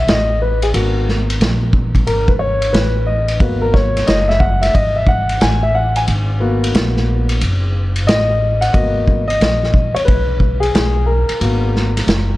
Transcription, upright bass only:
0, 0, Header, 1, 3, 480
1, 0, Start_track
1, 0, Key_signature, 5, "minor"
1, 0, Tempo, 666667
1, 534, Time_signature, 4, 2, 24, 8
1, 8908, End_track
2, 0, Start_track
2, 0, Title_t, "Upright bass"
2, 0, Program_c, 0, 32
2, 53, Note_on_c, 0, 33, 90
2, 509, Note_off_c, 0, 33, 0
2, 532, Note_on_c, 0, 32, 97
2, 989, Note_off_c, 0, 32, 0
2, 1013, Note_on_c, 0, 34, 83
2, 1469, Note_off_c, 0, 34, 0
2, 1490, Note_on_c, 0, 32, 75
2, 1948, Note_off_c, 0, 32, 0
2, 1971, Note_on_c, 0, 33, 94
2, 2428, Note_off_c, 0, 33, 0
2, 2450, Note_on_c, 0, 32, 100
2, 2908, Note_off_c, 0, 32, 0
2, 2936, Note_on_c, 0, 30, 84
2, 3391, Note_off_c, 0, 30, 0
2, 3418, Note_on_c, 0, 32, 97
2, 3872, Note_off_c, 0, 32, 0
2, 3899, Note_on_c, 0, 33, 100
2, 4352, Note_off_c, 0, 33, 0
2, 4378, Note_on_c, 0, 32, 102
2, 4832, Note_off_c, 0, 32, 0
2, 4858, Note_on_c, 0, 34, 90
2, 5312, Note_off_c, 0, 34, 0
2, 5339, Note_on_c, 0, 30, 104
2, 5818, Note_off_c, 0, 30, 0
2, 5818, Note_on_c, 0, 33, 97
2, 6272, Note_off_c, 0, 33, 0
2, 6294, Note_on_c, 0, 32, 97
2, 6750, Note_off_c, 0, 32, 0
2, 6775, Note_on_c, 0, 34, 80
2, 7149, Note_off_c, 0, 34, 0
2, 7259, Note_on_c, 0, 35, 90
2, 7712, Note_off_c, 0, 35, 0
2, 7739, Note_on_c, 0, 35, 90
2, 8111, Note_off_c, 0, 35, 0
2, 8216, Note_on_c, 0, 32, 95
2, 8671, Note_off_c, 0, 32, 0
2, 8693, Note_on_c, 0, 30, 83
2, 8908, Note_off_c, 0, 30, 0
2, 8908, End_track
3, 0, Start_track
3, 0, Title_t, "Muted upright bass strokes"
3, 7170, Note_on_c, 9, 29, 43
3, 7242, Note_off_c, 9, 29, 0
3, 8133, Note_on_c, 9, 29, 42
3, 8205, Note_off_c, 9, 29, 0
3, 8908, End_track
0, 0, End_of_file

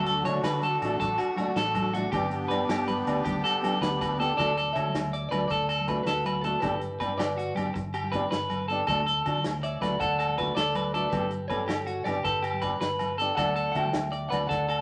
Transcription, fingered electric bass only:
0, 0, Header, 1, 2, 480
1, 0, Start_track
1, 0, Key_signature, 2, "major"
1, 0, Tempo, 374766
1, 2732, Time_signature, 12, 3, 24, 8
1, 18972, End_track
2, 0, Start_track
2, 0, Title_t, "Fingered electric bass"
2, 0, Program_c, 0, 33
2, 0, Note_on_c, 0, 38, 92
2, 265, Note_off_c, 0, 38, 0
2, 319, Note_on_c, 0, 50, 92
2, 534, Note_off_c, 0, 50, 0
2, 550, Note_on_c, 0, 50, 91
2, 978, Note_off_c, 0, 50, 0
2, 1045, Note_on_c, 0, 33, 90
2, 1257, Note_off_c, 0, 33, 0
2, 1281, Note_on_c, 0, 33, 87
2, 1495, Note_off_c, 0, 33, 0
2, 1997, Note_on_c, 0, 33, 92
2, 2632, Note_off_c, 0, 33, 0
2, 2718, Note_on_c, 0, 31, 96
2, 3143, Note_off_c, 0, 31, 0
2, 3200, Note_on_c, 0, 43, 92
2, 3415, Note_off_c, 0, 43, 0
2, 3443, Note_on_c, 0, 43, 79
2, 3866, Note_off_c, 0, 43, 0
2, 3922, Note_on_c, 0, 38, 85
2, 4136, Note_off_c, 0, 38, 0
2, 4165, Note_on_c, 0, 38, 93
2, 4378, Note_off_c, 0, 38, 0
2, 4880, Note_on_c, 0, 38, 89
2, 5514, Note_off_c, 0, 38, 0
2, 5615, Note_on_c, 0, 38, 77
2, 6034, Note_off_c, 0, 38, 0
2, 6092, Note_on_c, 0, 50, 85
2, 6303, Note_off_c, 0, 50, 0
2, 6332, Note_on_c, 0, 38, 81
2, 6752, Note_off_c, 0, 38, 0
2, 6808, Note_on_c, 0, 38, 79
2, 7021, Note_off_c, 0, 38, 0
2, 7046, Note_on_c, 0, 38, 84
2, 7679, Note_off_c, 0, 38, 0
2, 7752, Note_on_c, 0, 38, 72
2, 8391, Note_off_c, 0, 38, 0
2, 8488, Note_on_c, 0, 31, 80
2, 8911, Note_off_c, 0, 31, 0
2, 8973, Note_on_c, 0, 43, 80
2, 9184, Note_off_c, 0, 43, 0
2, 9196, Note_on_c, 0, 31, 78
2, 9624, Note_off_c, 0, 31, 0
2, 9688, Note_on_c, 0, 31, 81
2, 9902, Note_off_c, 0, 31, 0
2, 9935, Note_on_c, 0, 31, 82
2, 10564, Note_off_c, 0, 31, 0
2, 10666, Note_on_c, 0, 31, 78
2, 11291, Note_off_c, 0, 31, 0
2, 11374, Note_on_c, 0, 38, 90
2, 11794, Note_off_c, 0, 38, 0
2, 11864, Note_on_c, 0, 50, 85
2, 12070, Note_off_c, 0, 50, 0
2, 12112, Note_on_c, 0, 38, 81
2, 12524, Note_off_c, 0, 38, 0
2, 12562, Note_on_c, 0, 38, 82
2, 12778, Note_off_c, 0, 38, 0
2, 12817, Note_on_c, 0, 38, 78
2, 13445, Note_off_c, 0, 38, 0
2, 13529, Note_on_c, 0, 38, 74
2, 14160, Note_off_c, 0, 38, 0
2, 14246, Note_on_c, 0, 31, 86
2, 14669, Note_off_c, 0, 31, 0
2, 14730, Note_on_c, 0, 43, 77
2, 14941, Note_off_c, 0, 43, 0
2, 14967, Note_on_c, 0, 31, 79
2, 15389, Note_off_c, 0, 31, 0
2, 15455, Note_on_c, 0, 31, 78
2, 15664, Note_off_c, 0, 31, 0
2, 15687, Note_on_c, 0, 31, 90
2, 16318, Note_off_c, 0, 31, 0
2, 16404, Note_on_c, 0, 31, 71
2, 17036, Note_off_c, 0, 31, 0
2, 17127, Note_on_c, 0, 38, 78
2, 17548, Note_off_c, 0, 38, 0
2, 17607, Note_on_c, 0, 50, 80
2, 17818, Note_off_c, 0, 50, 0
2, 17858, Note_on_c, 0, 38, 73
2, 18274, Note_off_c, 0, 38, 0
2, 18338, Note_on_c, 0, 38, 77
2, 18544, Note_off_c, 0, 38, 0
2, 18577, Note_on_c, 0, 38, 83
2, 18972, Note_off_c, 0, 38, 0
2, 18972, End_track
0, 0, End_of_file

